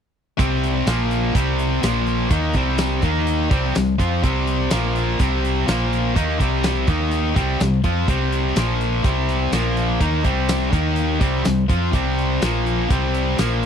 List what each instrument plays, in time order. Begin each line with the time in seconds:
0.37 fingered electric bass C2, distorted electric guitar C3 G3 C4, kick, closed hi-hat
0.64 closed hi-hat
0.87 fingered electric bass A#1, distorted electric guitar A#2 F3 A#3, snare, closed hi-hat, tambourine
1.11 closed hi-hat
1.35 fingered electric bass C2, distorted electric guitar C3 G3 C4, kick, closed hi-hat
1.59 closed hi-hat
1.83 fingered electric bass A#1, distorted electric guitar A#2 F3 A#3, snare, closed hi-hat, tambourine
2.07 closed hi-hat
2.30 fingered electric bass D#2, distorted electric guitar D#3 A#3 D#4, kick, closed hi-hat
2.54 fingered electric bass C2, distorted electric guitar C3 G3 C4, kick, closed hi-hat
2.78 snare, closed hi-hat, tambourine
3.02 fingered electric bass D#2, distorted electric guitar D#3 A#3 D#4, kick, closed hi-hat
3.27 closed hi-hat
3.51 fingered electric bass C2, distorted electric guitar C3 G3 C4, kick, closed hi-hat
3.75 fingered electric bass C2, distorted electric guitar C3 G3, snare, closed hi-hat, tambourine
3.98 fingered electric bass F2, distorted electric guitar F3 C4 F4, kick, closed hi-hat
4.23 fingered electric bass C2, distorted electric guitar C3 G3 C4, kick, closed hi-hat
4.47 closed hi-hat
4.71 fingered electric bass A#1, distorted electric guitar A#2 F3 A#3, snare, closed hi-hat, tambourine
4.96 closed hi-hat
5.19 fingered electric bass C2, distorted electric guitar C3 G3 C4, kick, closed hi-hat
5.45 closed hi-hat
5.67 fingered electric bass A#1, distorted electric guitar A#2 F3 A#3, snare, closed hi-hat, tambourine
5.93 closed hi-hat
6.16 fingered electric bass D#2, distorted electric guitar D#3 A#3 D#4, kick, closed hi-hat
6.39 fingered electric bass C2, distorted electric guitar C3 G3 C4, kick, closed hi-hat
6.64 snare, closed hi-hat, tambourine
6.87 fingered electric bass D#2, distorted electric guitar D#3 A#3 D#4, kick, closed hi-hat
7.11 closed hi-hat
7.35 fingered electric bass C2, distorted electric guitar C3 G3 C4, kick, closed hi-hat
7.60 fingered electric bass C2, distorted electric guitar C3 G3, snare, closed hi-hat, tambourine
7.84 fingered electric bass F2, distorted electric guitar F3 C4 F4, kick, closed hi-hat
8.08 fingered electric bass C2, distorted electric guitar C3 G3 C4, kick, closed hi-hat
8.32 closed hi-hat
8.56 fingered electric bass A#1, distorted electric guitar A#2 F3 A#3, snare, closed hi-hat, tambourine
8.81 closed hi-hat
9.04 fingered electric bass C2, distorted electric guitar C3 G3 C4, kick, closed hi-hat
9.29 closed hi-hat
9.52 fingered electric bass A#1, distorted electric guitar A#2 F3 A#3, snare, closed hi-hat, tambourine
9.77 closed hi-hat
10.00 fingered electric bass D#2, distorted electric guitar D#3 A#3 D#4, kick, closed hi-hat
10.24 fingered electric bass C2, distorted electric guitar C3 G3 C4, kick, closed hi-hat
10.49 snare, closed hi-hat, tambourine
10.72 fingered electric bass D#2, distorted electric guitar D#3 A#3 D#4, kick, closed hi-hat
10.96 closed hi-hat
11.20 fingered electric bass C2, distorted electric guitar C3 G3 C4, kick, closed hi-hat
11.43 fingered electric bass C2, distorted electric guitar C3 G3, snare, closed hi-hat, tambourine
11.68 fingered electric bass F2, distorted electric guitar F3 C4 F4, kick, closed hi-hat
11.91 fingered electric bass C2, distorted electric guitar C3 G3 C4, kick, closed hi-hat
12.19 closed hi-hat
12.41 fingered electric bass A#1, distorted electric guitar A#2 F3 A#3, snare, closed hi-hat, tambourine
12.67 closed hi-hat
12.90 fingered electric bass C2, distorted electric guitar C3 G3 C4, kick, closed hi-hat
13.15 closed hi-hat
13.38 fingered electric bass A#1, distorted electric guitar A#2 F3 A#3, snare, closed hi-hat, tambourine